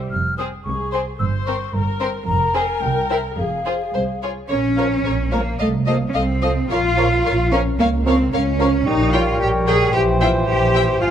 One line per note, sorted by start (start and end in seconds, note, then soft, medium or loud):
0.00 0.11 G3 soft
0.11 0.55 F1 medium
0.11 0.55 F2 medium
0.11 0.37 F6 medium
0.38 0.47 C4 soft
0.38 0.47 G#4 soft
0.38 0.46 C5 soft
0.38 0.44 D#6 medium
0.65 1.09 C2 soft
0.65 1.09 C2 medium
0.65 1.16 G#4 soft
0.65 0.91 C#6 medium
0.92 1.01 C4 soft
0.92 1.01 G#4 soft
0.92 1.00 C5 soft
0.92 0.98 C6 medium
1.19 1.63 G1 medium
1.19 1.63 G2 medium
1.19 1.73 C5 soft
1.19 1.25 E6 medium
1.46 1.56 C4 soft
1.46 1.55 A#4 soft
1.46 1.55 C5 soft
1.46 1.75 C#6 medium
1.74 2.17 G1 medium
1.74 2.16 G2 medium
1.74 2.26 A#4 medium
1.74 2.00 A#5 medium
2.00 2.09 C4 soft
2.00 2.09 A#4 soft
2.00 2.08 C5 soft
2.00 2.06 C6 medium
2.27 2.71 F1 medium
2.27 2.70 F2 medium
2.27 3.36 A#4 medium
2.27 2.56 A#5 medium
2.54 2.62 C4 soft
2.54 2.62 G#4 soft
2.54 2.62 C5 soft
2.54 2.83 G#5 medium
2.82 3.26 C2 medium
2.82 3.10 G5 medium
3.10 3.18 E4 soft
3.10 3.19 A#4 soft
3.10 3.18 C5 soft
3.10 3.17 G5 medium
3.38 3.82 F1 medium
3.38 3.82 F2 medium
3.38 4.22 G#4 soft
3.38 4.21 F5 medium
3.66 3.74 F4 soft
3.66 3.74 G#4 soft
3.66 3.74 C5 soft
3.94 4.38 C2 soft
3.94 4.39 C2 soft
3.94 4.02 C5 soft
4.22 4.31 F4 soft
4.22 4.30 G#4 soft
4.22 4.30 C#5 soft
4.48 4.99 A#1 medium
4.48 5.29 C#4 medium
4.48 4.58 A#4 soft
4.48 4.56 C#5 soft
4.48 4.59 C#5 soft
4.77 4.88 F3 soft
4.77 4.88 A#4 soft
4.77 4.86 A#4 soft
4.77 4.85 C#5 soft
4.77 4.86 C#5 soft
4.77 4.87 F5 soft
4.77 4.84 A#5 soft
5.04 5.54 A#1 medium
5.04 5.14 A#4 soft
5.04 5.12 C#5 soft
5.04 5.14 C#5 soft
5.32 5.42 F3 soft
5.32 5.45 A#3 soft
5.32 5.60 A#3 medium
5.32 5.41 A#4 soft
5.32 5.43 A#4 soft
5.32 5.40 C#5 soft
5.32 5.43 F5 soft
5.32 5.40 A#5 soft
5.59 6.08 C2 medium
5.59 5.87 A3 medium
5.59 5.69 A3 medium
5.59 5.69 A4 soft
5.59 5.67 D#5 soft
5.59 5.68 F5 soft
5.86 5.97 F3 soft
5.86 5.96 A#3 medium
5.86 6.15 A#3 medium
5.86 5.96 A4 soft
5.86 5.98 C5 soft
5.86 5.94 D#5 soft
5.86 5.97 D#5 soft
5.86 5.95 F5 soft
5.86 5.93 A5 soft
6.08 6.15 C#4 medium
6.14 6.64 C2 medium
6.14 6.70 C4 medium
6.14 6.69 C4 medium
6.14 6.23 A4 soft
6.14 6.22 D#5 soft
6.14 6.22 F5 soft
6.42 6.52 F3 soft
6.42 6.51 A4 soft
6.42 6.53 C5 soft
6.42 6.50 D#5 soft
6.42 6.53 D#5 soft
6.42 6.50 F5 soft
6.42 6.49 A5 soft
6.70 7.19 A#1 medium
6.70 7.50 F4 medium
6.70 7.51 F4 medium
6.70 6.79 A#4 medium
6.70 6.78 C#5 soft
6.70 6.79 F5 medium
6.97 7.07 F3 soft
6.97 7.06 A#4 soft
6.97 7.08 A#4 soft
6.97 7.06 C#5 soft
6.97 7.08 C#5 soft
6.97 7.06 F5 soft
6.97 7.04 A#5 soft
7.25 7.73 A#1 medium
7.25 7.33 A#4 medium
7.25 7.33 C#5 soft
7.25 7.33 F5 soft
7.51 7.62 F3 soft
7.51 7.60 C#4 medium
7.51 7.79 C#4 medium
7.51 7.60 A#4 medium
7.51 7.62 A#4 soft
7.51 7.61 C#5 soft
7.51 7.60 F5 medium
7.51 7.58 A#5 soft
7.79 8.27 C#2 medium
7.79 7.87 A#3 medium
7.79 8.06 A#3 medium
7.79 7.87 A#4 medium
7.79 7.88 C#5 medium
7.79 7.87 F5 medium
8.06 8.16 F3 medium
8.06 8.32 C4 medium
8.06 8.19 C4 medium
8.06 8.14 A#4 soft
8.06 8.16 A#4 soft
8.06 8.16 C#5 soft
8.06 8.15 C#5 medium
8.06 8.15 F5 medium
8.06 8.12 A#5 soft
8.33 8.80 C#2 medium
8.33 8.85 C#4 medium
8.33 8.41 A#4 medium
8.33 8.41 C#5 medium
8.33 8.41 F5 medium
8.59 8.69 F3 soft
8.59 8.68 A#4 medium
8.59 8.70 A#4 medium
8.59 8.67 C#5 soft
8.59 8.70 C#5 medium
8.59 8.69 F5 medium
8.59 8.66 A#5 medium
8.85 9.31 A#1 medium
8.85 9.96 G3 medium
8.85 9.13 D#4 medium
8.85 9.96 A#4 medium
8.85 9.89 C#5 medium
8.85 10.98 G5 medium
9.13 9.25 F4 medium
9.13 9.40 F4 medium
9.13 9.21 A#4 medium
9.13 9.21 C#5 medium
9.13 9.21 G5 medium
9.39 9.85 A#1 medium
9.39 9.51 G4 medium
9.39 9.48 G4 medium
9.67 9.79 G#4 medium
9.67 9.93 G#4 medium
9.67 9.75 A#4 medium
9.67 9.75 C#5 medium
9.67 9.75 G5 medium
9.93 10.39 A#1 medium
9.93 11.00 E3 medium
9.93 10.02 G4 medium
9.93 10.21 G4 medium
9.93 11.03 C5 medium
9.93 11.11 C5 medium
10.21 10.29 F4 medium
10.21 10.48 F4 medium
10.21 10.29 C5 medium
10.21 10.29 E5 medium
10.21 10.29 G5 medium
10.47 10.92 A#1 medium
10.47 11.00 G4 medium
10.74 10.82 C5 medium
10.74 10.82 E5 soft
10.74 10.82 G5 medium
11.01 11.11 G#1 medium
11.01 11.11 F3 medium
11.01 11.11 F4 medium
11.01 11.09 F4 medium
11.01 11.11 F5 medium
11.01 11.11 G#5 medium